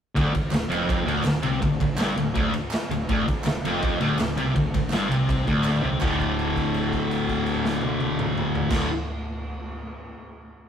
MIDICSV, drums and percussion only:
0, 0, Header, 1, 2, 480
1, 0, Start_track
1, 0, Tempo, 364520
1, 209, Time_signature, 4, 2, 24, 8
1, 14074, End_track
2, 0, Start_track
2, 0, Title_t, "Drums"
2, 214, Note_on_c, 9, 36, 110
2, 218, Note_on_c, 9, 51, 100
2, 346, Note_off_c, 9, 36, 0
2, 350, Note_off_c, 9, 51, 0
2, 455, Note_on_c, 9, 51, 76
2, 456, Note_on_c, 9, 36, 79
2, 587, Note_off_c, 9, 36, 0
2, 587, Note_off_c, 9, 51, 0
2, 674, Note_on_c, 9, 39, 90
2, 703, Note_on_c, 9, 51, 96
2, 719, Note_on_c, 9, 38, 105
2, 805, Note_off_c, 9, 39, 0
2, 835, Note_off_c, 9, 51, 0
2, 850, Note_off_c, 9, 38, 0
2, 942, Note_on_c, 9, 51, 81
2, 1074, Note_off_c, 9, 51, 0
2, 1176, Note_on_c, 9, 36, 115
2, 1182, Note_on_c, 9, 51, 107
2, 1308, Note_off_c, 9, 36, 0
2, 1314, Note_off_c, 9, 51, 0
2, 1425, Note_on_c, 9, 51, 69
2, 1557, Note_off_c, 9, 51, 0
2, 1625, Note_on_c, 9, 39, 100
2, 1657, Note_on_c, 9, 51, 93
2, 1672, Note_on_c, 9, 38, 122
2, 1757, Note_off_c, 9, 39, 0
2, 1788, Note_off_c, 9, 51, 0
2, 1804, Note_off_c, 9, 38, 0
2, 1881, Note_on_c, 9, 51, 83
2, 2013, Note_off_c, 9, 51, 0
2, 2133, Note_on_c, 9, 36, 99
2, 2136, Note_on_c, 9, 51, 105
2, 2265, Note_off_c, 9, 36, 0
2, 2267, Note_off_c, 9, 51, 0
2, 2374, Note_on_c, 9, 36, 100
2, 2379, Note_on_c, 9, 51, 83
2, 2506, Note_off_c, 9, 36, 0
2, 2510, Note_off_c, 9, 51, 0
2, 2599, Note_on_c, 9, 39, 109
2, 2623, Note_on_c, 9, 51, 98
2, 2639, Note_on_c, 9, 38, 117
2, 2731, Note_off_c, 9, 39, 0
2, 2755, Note_off_c, 9, 51, 0
2, 2770, Note_off_c, 9, 38, 0
2, 2862, Note_on_c, 9, 51, 78
2, 2994, Note_off_c, 9, 51, 0
2, 3098, Note_on_c, 9, 51, 86
2, 3103, Note_on_c, 9, 36, 117
2, 3229, Note_off_c, 9, 51, 0
2, 3235, Note_off_c, 9, 36, 0
2, 3338, Note_on_c, 9, 51, 69
2, 3470, Note_off_c, 9, 51, 0
2, 3565, Note_on_c, 9, 39, 105
2, 3588, Note_on_c, 9, 51, 101
2, 3604, Note_on_c, 9, 38, 103
2, 3697, Note_off_c, 9, 39, 0
2, 3720, Note_off_c, 9, 51, 0
2, 3735, Note_off_c, 9, 38, 0
2, 3834, Note_on_c, 9, 51, 73
2, 3965, Note_off_c, 9, 51, 0
2, 4066, Note_on_c, 9, 51, 97
2, 4075, Note_on_c, 9, 36, 103
2, 4198, Note_off_c, 9, 51, 0
2, 4207, Note_off_c, 9, 36, 0
2, 4319, Note_on_c, 9, 36, 89
2, 4321, Note_on_c, 9, 51, 75
2, 4450, Note_off_c, 9, 36, 0
2, 4453, Note_off_c, 9, 51, 0
2, 4530, Note_on_c, 9, 39, 100
2, 4554, Note_on_c, 9, 51, 91
2, 4570, Note_on_c, 9, 38, 107
2, 4661, Note_off_c, 9, 39, 0
2, 4686, Note_off_c, 9, 51, 0
2, 4702, Note_off_c, 9, 38, 0
2, 4807, Note_on_c, 9, 51, 88
2, 4938, Note_off_c, 9, 51, 0
2, 5035, Note_on_c, 9, 51, 93
2, 5045, Note_on_c, 9, 36, 101
2, 5167, Note_off_c, 9, 51, 0
2, 5176, Note_off_c, 9, 36, 0
2, 5275, Note_on_c, 9, 51, 68
2, 5406, Note_off_c, 9, 51, 0
2, 5513, Note_on_c, 9, 39, 97
2, 5522, Note_on_c, 9, 51, 95
2, 5537, Note_on_c, 9, 38, 113
2, 5644, Note_off_c, 9, 39, 0
2, 5653, Note_off_c, 9, 51, 0
2, 5669, Note_off_c, 9, 38, 0
2, 5759, Note_on_c, 9, 51, 77
2, 5891, Note_off_c, 9, 51, 0
2, 6000, Note_on_c, 9, 51, 95
2, 6004, Note_on_c, 9, 36, 95
2, 6131, Note_off_c, 9, 51, 0
2, 6135, Note_off_c, 9, 36, 0
2, 6245, Note_on_c, 9, 36, 91
2, 6245, Note_on_c, 9, 51, 89
2, 6377, Note_off_c, 9, 36, 0
2, 6377, Note_off_c, 9, 51, 0
2, 6453, Note_on_c, 9, 39, 84
2, 6480, Note_on_c, 9, 51, 108
2, 6496, Note_on_c, 9, 38, 103
2, 6585, Note_off_c, 9, 39, 0
2, 6611, Note_off_c, 9, 51, 0
2, 6627, Note_off_c, 9, 38, 0
2, 6734, Note_on_c, 9, 51, 76
2, 6866, Note_off_c, 9, 51, 0
2, 6967, Note_on_c, 9, 36, 107
2, 6979, Note_on_c, 9, 51, 105
2, 7099, Note_off_c, 9, 36, 0
2, 7111, Note_off_c, 9, 51, 0
2, 7206, Note_on_c, 9, 36, 73
2, 7209, Note_on_c, 9, 51, 59
2, 7337, Note_off_c, 9, 36, 0
2, 7341, Note_off_c, 9, 51, 0
2, 7424, Note_on_c, 9, 39, 91
2, 7458, Note_on_c, 9, 38, 60
2, 7556, Note_off_c, 9, 39, 0
2, 7590, Note_off_c, 9, 38, 0
2, 7687, Note_on_c, 9, 43, 82
2, 7819, Note_off_c, 9, 43, 0
2, 7908, Note_on_c, 9, 39, 92
2, 7920, Note_on_c, 9, 49, 84
2, 7925, Note_on_c, 9, 36, 95
2, 8039, Note_off_c, 9, 39, 0
2, 8051, Note_off_c, 9, 49, 0
2, 8057, Note_off_c, 9, 36, 0
2, 8164, Note_on_c, 9, 36, 72
2, 8181, Note_on_c, 9, 49, 48
2, 8296, Note_off_c, 9, 36, 0
2, 8312, Note_off_c, 9, 49, 0
2, 8411, Note_on_c, 9, 57, 44
2, 8543, Note_off_c, 9, 57, 0
2, 8641, Note_on_c, 9, 36, 73
2, 8653, Note_on_c, 9, 49, 50
2, 8772, Note_off_c, 9, 36, 0
2, 8785, Note_off_c, 9, 49, 0
2, 8876, Note_on_c, 9, 57, 49
2, 9008, Note_off_c, 9, 57, 0
2, 9120, Note_on_c, 9, 36, 59
2, 9125, Note_on_c, 9, 49, 44
2, 9252, Note_off_c, 9, 36, 0
2, 9256, Note_off_c, 9, 49, 0
2, 9364, Note_on_c, 9, 57, 50
2, 9495, Note_off_c, 9, 57, 0
2, 9596, Note_on_c, 9, 36, 64
2, 9602, Note_on_c, 9, 49, 52
2, 9728, Note_off_c, 9, 36, 0
2, 9734, Note_off_c, 9, 49, 0
2, 9826, Note_on_c, 9, 57, 55
2, 9958, Note_off_c, 9, 57, 0
2, 10079, Note_on_c, 9, 38, 100
2, 10210, Note_off_c, 9, 38, 0
2, 10292, Note_on_c, 9, 48, 96
2, 10423, Note_off_c, 9, 48, 0
2, 10540, Note_on_c, 9, 48, 109
2, 10671, Note_off_c, 9, 48, 0
2, 10785, Note_on_c, 9, 47, 105
2, 10917, Note_off_c, 9, 47, 0
2, 11027, Note_on_c, 9, 45, 100
2, 11159, Note_off_c, 9, 45, 0
2, 11263, Note_on_c, 9, 43, 106
2, 11395, Note_off_c, 9, 43, 0
2, 11461, Note_on_c, 9, 49, 118
2, 11467, Note_on_c, 9, 36, 108
2, 11476, Note_on_c, 9, 38, 115
2, 11592, Note_off_c, 9, 49, 0
2, 11599, Note_off_c, 9, 36, 0
2, 11608, Note_off_c, 9, 38, 0
2, 14074, End_track
0, 0, End_of_file